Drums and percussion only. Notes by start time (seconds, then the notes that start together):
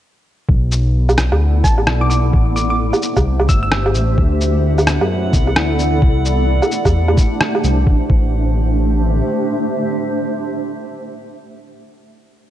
0.49 kick
0.72 shaker
1.09 low woodblock, shaker
1.18 cross-stick, shaker
1.32 low woodblock
1.64 kick, shaker
1.78 low woodblock
1.87 cross-stick
2.10 shaker
2.33 kick
2.56 shaker
2.93 low woodblock, shaker
3.02 shaker
3.17 kick, low woodblock, shaker
3.40 low woodblock
3.49 kick, shaker
3.72 cross-stick
3.86 low woodblock
3.95 shaker
4.18 kick
4.41 shaker
4.78 low woodblock, shaker
4.87 cross-stick, shaker
5.01 low woodblock
5.33 kick, shaker
5.47 low woodblock
5.56 cross-stick
5.79 shaker
6.02 kick
6.25 shaker
6.62 low woodblock, shaker
6.72 shaker
6.85 kick, low woodblock, shaker
7.08 low woodblock
7.17 kick, shaker
7.41 cross-stick
7.55 low woodblock
7.64 shaker
7.87 kick
8.10 kick